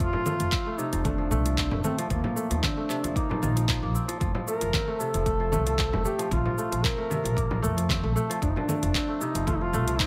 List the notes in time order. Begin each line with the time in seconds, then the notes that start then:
Already playing: A3 C4
0.00 F1 F3 F4, kick, closed hi-hat, shaker
0.13 F3, frame drum
0.25 A3, low conga, shaker
0.40 F1 F3, closed hi-hat, shaker
0.52 C4, kick, clap, closed hi-hat, shaker
0.66 A3
0.78 C3 D#4, shaker
0.92 F1 F3, closed hi-hat, shaker
1.03 A3 D4, kick, closed hi-hat, low conga, shaker
1.18 F3
1.31 C2 A3, shaker
1.45 F3, closed hi-hat, shaker
1.58 C4, kick, clap, closed hi-hat, shaker
1.71 F1 A3, frame drum
1.84 A3 C4, low conga, shaker
1.98 F3, closed hi-hat, shaker
2.10 D#2 F3 A#3, kick, closed hi-hat, shaker
2.24 F3, frame drum
2.36 A3, shaker
2.50 D#2 F3, closed hi-hat, shaker
2.57 D#4
2.63 C4 D4, kick, clap, closed hi-hat, low conga, shaker
2.77 A3
2.90 C3, clap, shaker
3.04 D#2 F3, closed hi-hat, shaker
3.16 A#3 D#4, kick, closed hi-hat, shaker
3.29 F3, frame drum
3.42 A#1 D#4 F4, low conga, shaker
3.56 F3, closed hi-hat, shaker
3.68 F3, kick, clap, closed hi-hat, shaker
3.82 A#1 A#3
3.95 C4, shaker
4.08 F3, closed hi-hat, shaker
4.20 F1 F3, kick, closed hi-hat, shaker
4.35 F3, frame drum
4.47 A3 A#4, shaker
4.61 F1 F3, closed hi-hat, shaker
4.74 C4, kick, clap, closed hi-hat, low conga, shaker
4.88 A3
4.99 C3 A4, shaker
5.14 F1 F3, closed hi-hat, shaker
5.26 A3, kick, closed hi-hat, shaker
5.40 F3
5.52 C2 A3, low conga, shaker
5.66 F3, closed hi-hat, shaker
5.79 C4, kick, clap, closed hi-hat, shaker
5.93 F1 A3, frame drum
6.05 A3 G4, shaker
6.19 F3, closed hi-hat, shaker
6.31 A#1 F3 F4, kick, closed hi-hat, low conga, shaker
6.45 F3, frame drum
6.58 A3, shaker
6.72 A#1 F3, closed hi-hat, shaker
6.84 C4 A#4, kick, clap, closed hi-hat, shaker
6.98 A3
7.10 C3, low conga, shaker
7.24 A#1 F3, closed hi-hat, shaker
7.36 A#3, kick, closed hi-hat, shaker
7.51 F3, frame drum
7.62 F2 A3, shaker
7.77 F3, closed hi-hat, shaker
7.89 C4, kick, clap, closed hi-hat, low conga, shaker
8.03 A#1 A3
8.16 A3, shaker
8.30 F3, closed hi-hat, shaker
8.42 F1 F3 D4, kick, closed hi-hat, shaker
8.50 D#4
8.56 F3 D4, frame drum
8.68 A3, low conga, shaker
8.82 F1 F3, closed hi-hat, shaker
8.94 C4, kick, clap, closed hi-hat, shaker
9.08 A3
9.21 C3 D#4, shaker
9.35 F1 F3, closed hi-hat, shaker
9.47 A3 F4, kick, closed hi-hat, low conga, shaker
9.55 D#4
9.61 F3 F4
9.73 C2 A3, shaker
9.88 F3, closed hi-hat, shaker
9.99 C4 D#4, kick, clap, closed hi-hat, shaker